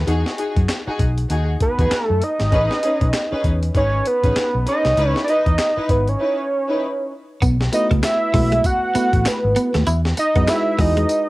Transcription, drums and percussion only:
0.08 closed hi-hat
0.26 snare
0.38 closed hi-hat
0.56 kick, closed hi-hat
0.69 snare, clap, closed hi-hat
0.99 kick, closed hi-hat
1.18 closed hi-hat
1.30 closed hi-hat
1.60 kick, closed hi-hat
1.79 kick, closed hi-hat
1.91 snare, clap, closed hi-hat
2.22 closed hi-hat
2.40 snare, closed hi-hat
2.52 kick, closed hi-hat
2.71 snare
2.83 closed hi-hat
3.01 kick, closed hi-hat
3.13 snare, clap, closed hi-hat
3.44 kick, closed hi-hat
3.63 closed hi-hat
3.75 kick, closed hi-hat
4.06 closed hi-hat
4.24 kick, closed hi-hat
4.36 snare, clap, closed hi-hat
4.67 closed hi-hat
4.85 snare, closed hi-hat
4.97 closed hi-hat
5.16 snare
5.28 closed hi-hat
5.46 kick, closed hi-hat
5.58 snare, clap, closed hi-hat
5.89 kick, closed hi-hat
6.07 closed hi-hat
7.42 kick, closed hi-hat, tambourine
7.61 snare
7.73 closed hi-hat, tambourine
7.91 kick, closed hi-hat
8.03 snare, clap, closed hi-hat, tambourine
8.34 kick, open hi-hat
8.52 closed hi-hat
8.64 kick, closed hi-hat, tambourine
8.95 closed hi-hat, tambourine
9.13 kick, closed hi-hat
9.26 snare, clap, closed hi-hat, tambourine
9.56 closed hi-hat, tambourine
9.74 snare, closed hi-hat
9.87 closed hi-hat, tambourine
10.05 snare
10.17 closed hi-hat, tambourine
10.36 kick, closed hi-hat
10.48 snare, clap, closed hi-hat, tambourine
10.79 kick, open hi-hat
10.97 closed hi-hat
11.09 closed hi-hat, tambourine

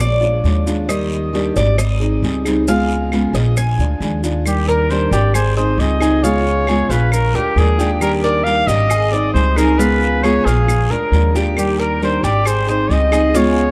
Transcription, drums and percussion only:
0.00 long guiro, maracas
0.22 maracas
0.44 short guiro, maracas
0.67 short guiro, maracas
0.89 long guiro, claves, maracas
1.12 maracas
1.34 short guiro, maracas
1.56 short guiro, maracas
1.78 long guiro, claves, maracas
2.01 maracas
2.24 short guiro, maracas
2.45 short guiro, claves, maracas
2.68 long guiro, maracas
2.90 maracas
3.12 short guiro, claves, maracas
3.35 short guiro, maracas
3.57 long guiro, claves, maracas
3.79 maracas
4.02 short guiro, maracas
4.24 short guiro, maracas
4.46 long guiro, claves, maracas
4.69 maracas
4.90 short guiro, maracas
5.13 short guiro, maracas
5.34 long guiro, claves, maracas
5.58 maracas
5.80 short guiro, maracas
6.01 short guiro, claves, maracas
6.24 long guiro, maracas
6.47 maracas
6.67 short guiro, claves, maracas
6.91 short guiro, maracas
7.12 long guiro, claves, maracas
7.35 maracas
7.57 short guiro, maracas
7.80 short guiro, maracas
8.01 long guiro, claves, maracas
8.24 maracas
8.47 short guiro, maracas
8.68 short guiro, maracas
8.90 long guiro, claves, maracas
9.13 maracas
9.36 short guiro, maracas
9.56 short guiro, claves, maracas
9.80 long guiro, maracas
10.03 maracas
10.24 short guiro, claves, maracas
10.47 short guiro, maracas
10.68 long guiro, claves, maracas
10.91 maracas
11.13 short guiro, maracas
11.36 short guiro, maracas
11.57 long guiro, claves, maracas
11.81 maracas
12.02 short guiro, maracas
12.24 short guiro, maracas
12.45 long guiro, claves, maracas
12.69 maracas
12.91 short guiro, maracas
13.12 short guiro, claves, maracas
13.35 long guiro, maracas
13.58 maracas

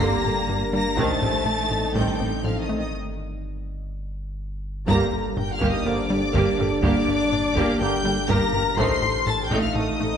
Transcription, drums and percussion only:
0.24 taiko low-mid
0.97 taiko
1.22 taiko low-mid
1.46 taiko low-mid
1.95 taiko
2.19 taiko low-mid
4.88 taiko
5.37 taiko low-mid
5.61 taiko
6.34 taiko
6.59 taiko low-mid
6.83 taiko
7.32 taiko low-mid
7.56 taiko
8.29 taiko
8.54 taiko low-mid
8.78 taiko
9.27 taiko low-mid
9.51 taiko

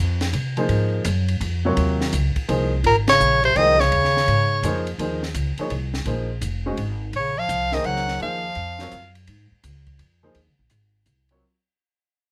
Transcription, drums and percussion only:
0.21 snare, ride
0.33 ride
0.57 ride
0.69 ride
1.05 hi-hat pedal, ride
1.28 ride
1.41 ride
1.77 ride
2.01 snare
2.13 hi-hat pedal, ride
2.36 kick, ride
2.49 ride
2.84 ride
3.08 snare, ride
3.20 hi-hat pedal
3.44 ride
3.56 ride
3.80 snare
3.92 ride
4.04 snare
4.17 snare
4.28 ride
4.63 hi-hat pedal, ride
4.87 ride
4.99 ride
5.23 snare
5.34 hi-hat pedal, ride
5.58 ride
5.70 ride
5.94 snare
6.05 ride
6.41 hi-hat pedal, ride
6.77 ride
7.13 ride
7.49 hi-hat pedal, ride
7.72 snare
7.84 ride
7.96 snare
8.08 snare
8.20 ride
8.55 ride
8.79 snare
8.91 hi-hat pedal, ride
9.15 ride
9.27 ride
9.64 hi-hat pedal, ride
9.87 kick, ride
9.99 ride
10.35 ride
10.70 hi-hat pedal, ride
11.06 hi-hat pedal, ride
11.29 ride

